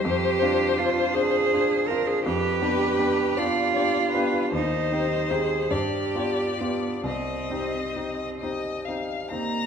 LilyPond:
<<
  \new Staff \with { instrumentName = "Violin" } { \time 6/8 \key c \minor \tempo 4. = 51 c''2. | b'4. d''8 d''8 b'8 | c''4. d''4. | ees''4. ees''8 f''8 bes''8 | }
  \new Staff \with { instrumentName = "Cello" } { \time 6/8 \key c \minor g'4 f'8 aes'4 bes'16 aes'16 | g'4. f'4. | ees'4 aes'8 g'4 b8 | c'4. r4 bes8 | }
  \new Staff \with { instrumentName = "Grand piano" } { \time 6/8 \key c \minor f,8 <c' d' f'>8 <c' d' f'>8 <c' d' f'>8 <c' d' f'>8 <c' d' f'>8 | f,8 <b d' g'>8 <b d' g'>8 <b d' g'>8 <b d' g'>8 <b d' g'>8 | ees,8 <c' ees' g'>8 <c' ees' g'>8 g,8 <b f' g'>8 <b f' g'>8 | c,8 <c' ees' g'>8 <c' ees' g'>8 <c' ees' g'>8 <c' ees' g'>8 <c' ees' g'>8 | }
>>